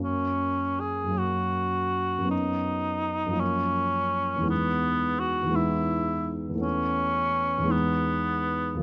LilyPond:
<<
  \new Staff \with { instrumentName = "Cor anglais" } { \time 6/8 \key fis \mixolydian \tempo 4. = 55 cis'4 gis'8 fis'4. | dis'4. cis'4. | b4 fis'8 e'4 r8 | cis'4. b4. | }
  \new Staff \with { instrumentName = "Grand piano" } { \clef bass \time 6/8 \key fis \mixolydian <fis, fis ais cis'>4. <fis, fis ais cis'>4. | <fis, fis b cis'>4. <fis, eis ais cis'>4. | <e, e gis b dis'>4. <e, e gis b dis'>4. | <e, e a b cis'>4. <e, e gis b dis'>4. | }
>>